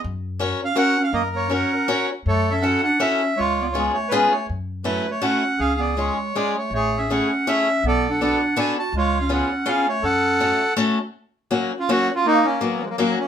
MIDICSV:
0, 0, Header, 1, 5, 480
1, 0, Start_track
1, 0, Key_signature, 3, "minor"
1, 0, Tempo, 371287
1, 47, Time_signature, 3, 2, 24, 8
1, 10127, Tempo, 367197
1, 17243, End_track
2, 0, Start_track
2, 0, Title_t, "Accordion"
2, 0, Program_c, 0, 21
2, 837, Note_on_c, 0, 77, 105
2, 996, Note_off_c, 0, 77, 0
2, 1005, Note_on_c, 0, 78, 114
2, 1324, Note_off_c, 0, 78, 0
2, 1335, Note_on_c, 0, 77, 88
2, 1468, Note_on_c, 0, 75, 87
2, 1470, Note_on_c, 0, 70, 70
2, 1485, Note_off_c, 0, 77, 0
2, 1586, Note_off_c, 0, 75, 0
2, 1758, Note_on_c, 0, 73, 83
2, 1964, Note_off_c, 0, 70, 0
2, 1968, Note_off_c, 0, 73, 0
2, 1979, Note_on_c, 0, 78, 74
2, 1983, Note_on_c, 0, 70, 51
2, 2667, Note_off_c, 0, 78, 0
2, 2669, Note_off_c, 0, 70, 0
2, 2944, Note_on_c, 0, 69, 69
2, 2944, Note_on_c, 0, 73, 90
2, 3239, Note_on_c, 0, 76, 73
2, 3268, Note_off_c, 0, 73, 0
2, 3381, Note_on_c, 0, 78, 78
2, 3411, Note_off_c, 0, 76, 0
2, 3635, Note_off_c, 0, 69, 0
2, 3643, Note_off_c, 0, 78, 0
2, 3663, Note_on_c, 0, 78, 101
2, 3889, Note_on_c, 0, 76, 83
2, 3896, Note_off_c, 0, 78, 0
2, 4354, Note_on_c, 0, 73, 89
2, 4383, Note_on_c, 0, 65, 75
2, 4388, Note_off_c, 0, 76, 0
2, 4664, Note_on_c, 0, 74, 73
2, 4694, Note_off_c, 0, 73, 0
2, 4743, Note_off_c, 0, 74, 0
2, 4808, Note_on_c, 0, 73, 67
2, 5063, Note_off_c, 0, 73, 0
2, 5065, Note_off_c, 0, 65, 0
2, 5083, Note_on_c, 0, 73, 88
2, 5283, Note_on_c, 0, 71, 85
2, 5322, Note_off_c, 0, 73, 0
2, 5565, Note_on_c, 0, 73, 66
2, 5575, Note_off_c, 0, 71, 0
2, 5776, Note_off_c, 0, 73, 0
2, 6267, Note_on_c, 0, 71, 73
2, 6597, Note_off_c, 0, 71, 0
2, 6600, Note_on_c, 0, 73, 76
2, 6758, Note_off_c, 0, 73, 0
2, 6762, Note_on_c, 0, 78, 88
2, 7235, Note_on_c, 0, 68, 72
2, 7245, Note_off_c, 0, 78, 0
2, 7245, Note_on_c, 0, 77, 86
2, 7499, Note_on_c, 0, 74, 71
2, 7504, Note_off_c, 0, 77, 0
2, 7716, Note_off_c, 0, 74, 0
2, 7741, Note_on_c, 0, 73, 70
2, 7920, Note_off_c, 0, 68, 0
2, 8211, Note_on_c, 0, 74, 93
2, 8219, Note_off_c, 0, 73, 0
2, 8473, Note_off_c, 0, 74, 0
2, 8500, Note_on_c, 0, 73, 64
2, 8701, Note_off_c, 0, 73, 0
2, 8720, Note_on_c, 0, 73, 92
2, 8735, Note_on_c, 0, 68, 63
2, 9017, Note_on_c, 0, 76, 70
2, 9032, Note_off_c, 0, 73, 0
2, 9175, Note_off_c, 0, 76, 0
2, 9205, Note_on_c, 0, 78, 70
2, 9407, Note_off_c, 0, 68, 0
2, 9667, Note_on_c, 0, 76, 96
2, 9682, Note_off_c, 0, 78, 0
2, 10149, Note_off_c, 0, 76, 0
2, 10179, Note_on_c, 0, 69, 67
2, 10179, Note_on_c, 0, 74, 99
2, 10478, Note_off_c, 0, 74, 0
2, 10486, Note_on_c, 0, 78, 68
2, 10622, Note_off_c, 0, 78, 0
2, 10642, Note_on_c, 0, 78, 77
2, 10840, Note_off_c, 0, 69, 0
2, 11111, Note_off_c, 0, 78, 0
2, 11113, Note_on_c, 0, 80, 92
2, 11338, Note_off_c, 0, 80, 0
2, 11378, Note_on_c, 0, 81, 85
2, 11581, Note_off_c, 0, 81, 0
2, 11605, Note_on_c, 0, 65, 76
2, 11628, Note_on_c, 0, 73, 87
2, 11891, Note_off_c, 0, 73, 0
2, 11912, Note_on_c, 0, 77, 73
2, 12057, Note_off_c, 0, 77, 0
2, 12086, Note_on_c, 0, 78, 67
2, 12270, Note_off_c, 0, 65, 0
2, 12542, Note_on_c, 0, 77, 94
2, 12552, Note_off_c, 0, 78, 0
2, 12799, Note_off_c, 0, 77, 0
2, 12807, Note_on_c, 0, 73, 88
2, 13000, Note_on_c, 0, 69, 72
2, 13018, Note_off_c, 0, 73, 0
2, 13027, Note_on_c, 0, 78, 101
2, 13912, Note_off_c, 0, 69, 0
2, 13926, Note_off_c, 0, 78, 0
2, 15308, Note_on_c, 0, 65, 80
2, 15445, Note_off_c, 0, 65, 0
2, 15460, Note_on_c, 0, 66, 109
2, 15736, Note_off_c, 0, 66, 0
2, 15773, Note_on_c, 0, 65, 86
2, 15905, Note_on_c, 0, 58, 80
2, 15917, Note_off_c, 0, 65, 0
2, 15923, Note_on_c, 0, 63, 113
2, 16168, Note_on_c, 0, 61, 82
2, 16177, Note_off_c, 0, 63, 0
2, 16380, Note_on_c, 0, 59, 70
2, 16384, Note_off_c, 0, 61, 0
2, 16586, Note_off_c, 0, 58, 0
2, 16630, Note_on_c, 0, 58, 95
2, 16644, Note_off_c, 0, 59, 0
2, 16674, Note_on_c, 0, 56, 63
2, 16686, Note_off_c, 0, 58, 0
2, 16734, Note_off_c, 0, 56, 0
2, 16747, Note_on_c, 0, 58, 74
2, 16829, Note_off_c, 0, 58, 0
2, 16848, Note_on_c, 0, 58, 105
2, 17116, Note_off_c, 0, 58, 0
2, 17122, Note_on_c, 0, 61, 77
2, 17243, Note_off_c, 0, 61, 0
2, 17243, End_track
3, 0, Start_track
3, 0, Title_t, "Steel-string acoustic guitar"
3, 0, Program_c, 1, 25
3, 510, Note_on_c, 1, 61, 61
3, 519, Note_on_c, 1, 66, 58
3, 523, Note_on_c, 1, 70, 53
3, 528, Note_on_c, 1, 73, 67
3, 773, Note_off_c, 1, 61, 0
3, 774, Note_off_c, 1, 70, 0
3, 774, Note_off_c, 1, 73, 0
3, 776, Note_off_c, 1, 66, 0
3, 975, Note_on_c, 1, 66, 64
3, 982, Note_on_c, 1, 70, 61
3, 989, Note_on_c, 1, 61, 66
3, 992, Note_on_c, 1, 73, 75
3, 1244, Note_off_c, 1, 66, 0
3, 1244, Note_off_c, 1, 70, 0
3, 1245, Note_off_c, 1, 73, 0
3, 1249, Note_off_c, 1, 61, 0
3, 1933, Note_on_c, 1, 61, 44
3, 1936, Note_on_c, 1, 66, 39
3, 1950, Note_on_c, 1, 70, 52
3, 1954, Note_on_c, 1, 73, 47
3, 2206, Note_off_c, 1, 73, 0
3, 2207, Note_off_c, 1, 66, 0
3, 2207, Note_off_c, 1, 70, 0
3, 2208, Note_off_c, 1, 61, 0
3, 2431, Note_on_c, 1, 61, 71
3, 2438, Note_on_c, 1, 66, 63
3, 2441, Note_on_c, 1, 70, 56
3, 2452, Note_on_c, 1, 73, 68
3, 2704, Note_off_c, 1, 61, 0
3, 2704, Note_off_c, 1, 66, 0
3, 2706, Note_off_c, 1, 70, 0
3, 2706, Note_off_c, 1, 73, 0
3, 3395, Note_on_c, 1, 61, 44
3, 3405, Note_on_c, 1, 69, 61
3, 3408, Note_on_c, 1, 66, 41
3, 3414, Note_on_c, 1, 64, 45
3, 3671, Note_off_c, 1, 61, 0
3, 3673, Note_off_c, 1, 69, 0
3, 3674, Note_off_c, 1, 64, 0
3, 3675, Note_off_c, 1, 66, 0
3, 3874, Note_on_c, 1, 61, 65
3, 3881, Note_on_c, 1, 69, 76
3, 3883, Note_on_c, 1, 66, 59
3, 3886, Note_on_c, 1, 64, 55
3, 4149, Note_off_c, 1, 64, 0
3, 4150, Note_off_c, 1, 61, 0
3, 4151, Note_off_c, 1, 66, 0
3, 4152, Note_off_c, 1, 69, 0
3, 4832, Note_on_c, 1, 61, 35
3, 4844, Note_on_c, 1, 65, 46
3, 4848, Note_on_c, 1, 68, 60
3, 4850, Note_on_c, 1, 59, 46
3, 5106, Note_off_c, 1, 61, 0
3, 5107, Note_off_c, 1, 65, 0
3, 5108, Note_off_c, 1, 59, 0
3, 5111, Note_off_c, 1, 68, 0
3, 5319, Note_on_c, 1, 61, 64
3, 5327, Note_on_c, 1, 65, 60
3, 5330, Note_on_c, 1, 68, 91
3, 5332, Note_on_c, 1, 59, 64
3, 5587, Note_off_c, 1, 59, 0
3, 5587, Note_off_c, 1, 61, 0
3, 5587, Note_off_c, 1, 65, 0
3, 5590, Note_off_c, 1, 68, 0
3, 6260, Note_on_c, 1, 61, 54
3, 6270, Note_on_c, 1, 66, 51
3, 6272, Note_on_c, 1, 57, 60
3, 6276, Note_on_c, 1, 64, 49
3, 6529, Note_off_c, 1, 61, 0
3, 6529, Note_off_c, 1, 66, 0
3, 6533, Note_off_c, 1, 64, 0
3, 6534, Note_off_c, 1, 57, 0
3, 6742, Note_on_c, 1, 61, 61
3, 6743, Note_on_c, 1, 57, 78
3, 6755, Note_on_c, 1, 66, 69
3, 6756, Note_on_c, 1, 64, 52
3, 7005, Note_off_c, 1, 61, 0
3, 7008, Note_off_c, 1, 57, 0
3, 7008, Note_off_c, 1, 64, 0
3, 7010, Note_off_c, 1, 66, 0
3, 7716, Note_on_c, 1, 56, 44
3, 7723, Note_on_c, 1, 61, 42
3, 7730, Note_on_c, 1, 65, 40
3, 7741, Note_on_c, 1, 68, 57
3, 7976, Note_off_c, 1, 61, 0
3, 7976, Note_off_c, 1, 65, 0
3, 7977, Note_off_c, 1, 56, 0
3, 7977, Note_off_c, 1, 68, 0
3, 8215, Note_on_c, 1, 56, 61
3, 8221, Note_on_c, 1, 65, 51
3, 8222, Note_on_c, 1, 61, 53
3, 8224, Note_on_c, 1, 68, 63
3, 8468, Note_off_c, 1, 68, 0
3, 8469, Note_off_c, 1, 56, 0
3, 8469, Note_off_c, 1, 65, 0
3, 8471, Note_off_c, 1, 61, 0
3, 9179, Note_on_c, 1, 61, 42
3, 9186, Note_on_c, 1, 57, 48
3, 9189, Note_on_c, 1, 64, 46
3, 9195, Note_on_c, 1, 68, 50
3, 9438, Note_off_c, 1, 61, 0
3, 9438, Note_off_c, 1, 64, 0
3, 9441, Note_off_c, 1, 57, 0
3, 9441, Note_off_c, 1, 68, 0
3, 9659, Note_on_c, 1, 61, 62
3, 9662, Note_on_c, 1, 68, 67
3, 9665, Note_on_c, 1, 57, 69
3, 9669, Note_on_c, 1, 64, 53
3, 9915, Note_off_c, 1, 68, 0
3, 9917, Note_off_c, 1, 61, 0
3, 9918, Note_off_c, 1, 64, 0
3, 9920, Note_off_c, 1, 57, 0
3, 10619, Note_on_c, 1, 62, 46
3, 10624, Note_on_c, 1, 66, 43
3, 10629, Note_on_c, 1, 59, 44
3, 10636, Note_on_c, 1, 69, 53
3, 10872, Note_off_c, 1, 66, 0
3, 10874, Note_off_c, 1, 62, 0
3, 10874, Note_off_c, 1, 69, 0
3, 10876, Note_off_c, 1, 59, 0
3, 11082, Note_on_c, 1, 59, 75
3, 11091, Note_on_c, 1, 62, 61
3, 11093, Note_on_c, 1, 69, 67
3, 11094, Note_on_c, 1, 66, 64
3, 11340, Note_off_c, 1, 59, 0
3, 11343, Note_off_c, 1, 69, 0
3, 11345, Note_off_c, 1, 62, 0
3, 11346, Note_off_c, 1, 66, 0
3, 12033, Note_on_c, 1, 61, 51
3, 12041, Note_on_c, 1, 59, 48
3, 12042, Note_on_c, 1, 65, 50
3, 12045, Note_on_c, 1, 68, 46
3, 12296, Note_off_c, 1, 68, 0
3, 12297, Note_off_c, 1, 61, 0
3, 12298, Note_off_c, 1, 65, 0
3, 12299, Note_off_c, 1, 59, 0
3, 12510, Note_on_c, 1, 61, 75
3, 12516, Note_on_c, 1, 68, 82
3, 12523, Note_on_c, 1, 59, 57
3, 12523, Note_on_c, 1, 65, 56
3, 12776, Note_off_c, 1, 61, 0
3, 12777, Note_off_c, 1, 68, 0
3, 12778, Note_off_c, 1, 59, 0
3, 12782, Note_off_c, 1, 65, 0
3, 13485, Note_on_c, 1, 61, 44
3, 13490, Note_on_c, 1, 57, 49
3, 13496, Note_on_c, 1, 69, 40
3, 13497, Note_on_c, 1, 66, 40
3, 13745, Note_off_c, 1, 61, 0
3, 13747, Note_off_c, 1, 69, 0
3, 13748, Note_off_c, 1, 57, 0
3, 13749, Note_off_c, 1, 66, 0
3, 13960, Note_on_c, 1, 57, 96
3, 13973, Note_on_c, 1, 61, 73
3, 13975, Note_on_c, 1, 66, 72
3, 13984, Note_on_c, 1, 69, 73
3, 14231, Note_off_c, 1, 57, 0
3, 14231, Note_off_c, 1, 66, 0
3, 14233, Note_off_c, 1, 61, 0
3, 14233, Note_off_c, 1, 69, 0
3, 14929, Note_on_c, 1, 54, 68
3, 14932, Note_on_c, 1, 58, 55
3, 14938, Note_on_c, 1, 61, 50
3, 14939, Note_on_c, 1, 66, 64
3, 15196, Note_off_c, 1, 54, 0
3, 15196, Note_off_c, 1, 58, 0
3, 15196, Note_off_c, 1, 61, 0
3, 15200, Note_off_c, 1, 66, 0
3, 15428, Note_on_c, 1, 58, 56
3, 15430, Note_on_c, 1, 61, 60
3, 15435, Note_on_c, 1, 54, 76
3, 15440, Note_on_c, 1, 66, 70
3, 15683, Note_off_c, 1, 61, 0
3, 15684, Note_off_c, 1, 58, 0
3, 15685, Note_off_c, 1, 66, 0
3, 15687, Note_off_c, 1, 54, 0
3, 16369, Note_on_c, 1, 58, 53
3, 16372, Note_on_c, 1, 54, 47
3, 16382, Note_on_c, 1, 61, 45
3, 16386, Note_on_c, 1, 66, 50
3, 16631, Note_off_c, 1, 58, 0
3, 16633, Note_off_c, 1, 54, 0
3, 16636, Note_off_c, 1, 66, 0
3, 16637, Note_off_c, 1, 61, 0
3, 16858, Note_on_c, 1, 54, 71
3, 16863, Note_on_c, 1, 58, 66
3, 16866, Note_on_c, 1, 61, 55
3, 16877, Note_on_c, 1, 66, 72
3, 17113, Note_off_c, 1, 61, 0
3, 17114, Note_off_c, 1, 66, 0
3, 17115, Note_off_c, 1, 54, 0
3, 17115, Note_off_c, 1, 58, 0
3, 17243, End_track
4, 0, Start_track
4, 0, Title_t, "Clarinet"
4, 0, Program_c, 2, 71
4, 808, Note_on_c, 2, 61, 66
4, 960, Note_off_c, 2, 61, 0
4, 968, Note_on_c, 2, 61, 101
4, 1273, Note_off_c, 2, 61, 0
4, 1280, Note_on_c, 2, 61, 77
4, 1441, Note_off_c, 2, 61, 0
4, 1469, Note_on_c, 2, 58, 93
4, 1587, Note_off_c, 2, 58, 0
4, 1718, Note_on_c, 2, 58, 54
4, 1918, Note_off_c, 2, 58, 0
4, 1926, Note_on_c, 2, 61, 78
4, 2641, Note_off_c, 2, 61, 0
4, 2918, Note_on_c, 2, 57, 84
4, 3223, Note_off_c, 2, 57, 0
4, 3256, Note_on_c, 2, 61, 58
4, 3373, Note_off_c, 2, 61, 0
4, 3381, Note_on_c, 2, 61, 82
4, 3642, Note_off_c, 2, 61, 0
4, 3672, Note_on_c, 2, 62, 76
4, 3874, Note_off_c, 2, 62, 0
4, 3882, Note_on_c, 2, 61, 73
4, 4336, Note_off_c, 2, 61, 0
4, 4352, Note_on_c, 2, 56, 86
4, 4660, Note_off_c, 2, 56, 0
4, 4686, Note_on_c, 2, 59, 57
4, 4759, Note_off_c, 2, 59, 0
4, 4829, Note_on_c, 2, 56, 79
4, 5061, Note_off_c, 2, 56, 0
4, 5069, Note_on_c, 2, 57, 57
4, 5291, Note_off_c, 2, 57, 0
4, 5303, Note_on_c, 2, 56, 67
4, 5552, Note_off_c, 2, 56, 0
4, 5560, Note_on_c, 2, 57, 54
4, 5774, Note_off_c, 2, 57, 0
4, 6250, Note_on_c, 2, 54, 72
4, 6556, Note_off_c, 2, 54, 0
4, 6576, Note_on_c, 2, 57, 60
4, 6730, Note_off_c, 2, 57, 0
4, 6759, Note_on_c, 2, 61, 76
4, 7197, Note_off_c, 2, 61, 0
4, 7247, Note_on_c, 2, 61, 92
4, 7463, Note_off_c, 2, 61, 0
4, 7470, Note_on_c, 2, 59, 65
4, 7680, Note_off_c, 2, 59, 0
4, 7715, Note_on_c, 2, 56, 63
4, 8160, Note_off_c, 2, 56, 0
4, 8211, Note_on_c, 2, 56, 62
4, 8448, Note_off_c, 2, 56, 0
4, 8486, Note_on_c, 2, 57, 55
4, 8677, Note_off_c, 2, 57, 0
4, 8685, Note_on_c, 2, 57, 81
4, 8983, Note_off_c, 2, 57, 0
4, 9033, Note_on_c, 2, 61, 53
4, 9162, Note_off_c, 2, 61, 0
4, 9169, Note_on_c, 2, 61, 81
4, 9617, Note_off_c, 2, 61, 0
4, 9665, Note_on_c, 2, 61, 76
4, 10101, Note_off_c, 2, 61, 0
4, 10147, Note_on_c, 2, 59, 84
4, 10432, Note_off_c, 2, 59, 0
4, 10464, Note_on_c, 2, 62, 71
4, 10602, Note_off_c, 2, 62, 0
4, 10617, Note_on_c, 2, 62, 89
4, 11053, Note_off_c, 2, 62, 0
4, 11088, Note_on_c, 2, 62, 74
4, 11325, Note_off_c, 2, 62, 0
4, 11368, Note_on_c, 2, 66, 73
4, 11556, Note_off_c, 2, 66, 0
4, 11585, Note_on_c, 2, 56, 92
4, 11868, Note_off_c, 2, 56, 0
4, 11925, Note_on_c, 2, 61, 66
4, 12049, Note_off_c, 2, 61, 0
4, 12063, Note_on_c, 2, 61, 76
4, 12495, Note_off_c, 2, 61, 0
4, 12525, Note_on_c, 2, 61, 81
4, 12764, Note_off_c, 2, 61, 0
4, 12795, Note_on_c, 2, 57, 61
4, 12991, Note_off_c, 2, 57, 0
4, 13015, Note_on_c, 2, 61, 79
4, 13920, Note_off_c, 2, 61, 0
4, 15299, Note_on_c, 2, 61, 57
4, 15427, Note_off_c, 2, 61, 0
4, 15460, Note_on_c, 2, 61, 69
4, 15736, Note_off_c, 2, 61, 0
4, 15766, Note_on_c, 2, 61, 54
4, 15899, Note_off_c, 2, 61, 0
4, 15907, Note_on_c, 2, 58, 112
4, 16144, Note_off_c, 2, 58, 0
4, 16183, Note_on_c, 2, 58, 75
4, 16371, Note_off_c, 2, 58, 0
4, 16390, Note_on_c, 2, 54, 73
4, 16623, Note_off_c, 2, 54, 0
4, 16639, Note_on_c, 2, 54, 61
4, 16678, Note_off_c, 2, 54, 0
4, 16686, Note_on_c, 2, 53, 52
4, 16732, Note_off_c, 2, 53, 0
4, 16740, Note_on_c, 2, 54, 59
4, 16840, Note_off_c, 2, 54, 0
4, 16893, Note_on_c, 2, 54, 71
4, 17111, Note_off_c, 2, 54, 0
4, 17119, Note_on_c, 2, 58, 66
4, 17243, Note_off_c, 2, 58, 0
4, 17243, End_track
5, 0, Start_track
5, 0, Title_t, "Upright bass"
5, 0, Program_c, 3, 32
5, 57, Note_on_c, 3, 42, 92
5, 667, Note_off_c, 3, 42, 0
5, 1459, Note_on_c, 3, 42, 89
5, 2090, Note_off_c, 3, 42, 0
5, 2919, Note_on_c, 3, 42, 80
5, 3552, Note_off_c, 3, 42, 0
5, 4387, Note_on_c, 3, 37, 68
5, 5003, Note_off_c, 3, 37, 0
5, 5812, Note_on_c, 3, 42, 76
5, 6424, Note_off_c, 3, 42, 0
5, 7234, Note_on_c, 3, 37, 77
5, 7856, Note_off_c, 3, 37, 0
5, 8669, Note_on_c, 3, 33, 80
5, 9303, Note_off_c, 3, 33, 0
5, 10127, Note_on_c, 3, 35, 84
5, 10746, Note_off_c, 3, 35, 0
5, 11554, Note_on_c, 3, 37, 81
5, 12177, Note_off_c, 3, 37, 0
5, 12998, Note_on_c, 3, 42, 73
5, 13626, Note_off_c, 3, 42, 0
5, 17243, End_track
0, 0, End_of_file